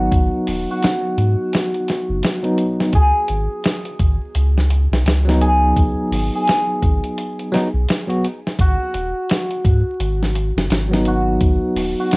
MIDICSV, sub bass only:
0, 0, Header, 1, 2, 480
1, 0, Start_track
1, 0, Key_signature, 5, "minor"
1, 0, Tempo, 705882
1, 76, Time_signature, 4, 2, 24, 8
1, 8275, End_track
2, 0, Start_track
2, 0, Title_t, "Sub bass"
2, 0, Program_c, 0, 38
2, 80, Note_on_c, 0, 32, 92
2, 204, Note_off_c, 0, 32, 0
2, 322, Note_on_c, 0, 27, 90
2, 445, Note_off_c, 0, 27, 0
2, 798, Note_on_c, 0, 44, 79
2, 923, Note_off_c, 0, 44, 0
2, 1420, Note_on_c, 0, 30, 101
2, 1505, Note_off_c, 0, 30, 0
2, 1993, Note_on_c, 0, 37, 100
2, 2121, Note_off_c, 0, 37, 0
2, 2237, Note_on_c, 0, 32, 89
2, 2363, Note_off_c, 0, 32, 0
2, 2717, Note_on_c, 0, 32, 81
2, 2843, Note_off_c, 0, 32, 0
2, 2957, Note_on_c, 0, 37, 99
2, 3312, Note_off_c, 0, 37, 0
2, 3338, Note_on_c, 0, 35, 94
2, 3424, Note_off_c, 0, 35, 0
2, 3435, Note_on_c, 0, 37, 87
2, 3897, Note_off_c, 0, 37, 0
2, 3921, Note_on_c, 0, 37, 98
2, 4045, Note_off_c, 0, 37, 0
2, 4153, Note_on_c, 0, 32, 89
2, 4281, Note_off_c, 0, 32, 0
2, 4641, Note_on_c, 0, 32, 75
2, 4765, Note_off_c, 0, 32, 0
2, 5259, Note_on_c, 0, 35, 102
2, 5344, Note_off_c, 0, 35, 0
2, 5841, Note_on_c, 0, 32, 99
2, 5965, Note_off_c, 0, 32, 0
2, 6078, Note_on_c, 0, 27, 91
2, 6203, Note_off_c, 0, 27, 0
2, 6561, Note_on_c, 0, 44, 79
2, 6685, Note_off_c, 0, 44, 0
2, 6795, Note_on_c, 0, 32, 98
2, 7152, Note_off_c, 0, 32, 0
2, 7178, Note_on_c, 0, 30, 96
2, 7264, Note_off_c, 0, 30, 0
2, 7274, Note_on_c, 0, 32, 93
2, 7736, Note_off_c, 0, 32, 0
2, 7758, Note_on_c, 0, 32, 101
2, 7883, Note_off_c, 0, 32, 0
2, 7990, Note_on_c, 0, 27, 93
2, 8119, Note_off_c, 0, 27, 0
2, 8275, End_track
0, 0, End_of_file